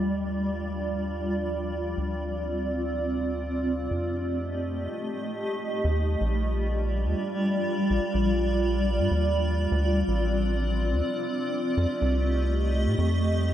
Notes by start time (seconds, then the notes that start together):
Already playing: D#2 G3 F4 D5
1.97 D2 C4
3.91 F2 A3 G4 D#5
5.85 D#2 G3 F4 D5
6.21 A#1
7.06 D#2
7.90 A#1
8.14 A#1
8.99 G2
9.11 D#2
9.72 D2 C4
10.08 A1
10.93 D2
11.65 A3 G4 D#5
11.77 F2
12.02 C2
12.86 A2
12.98 F2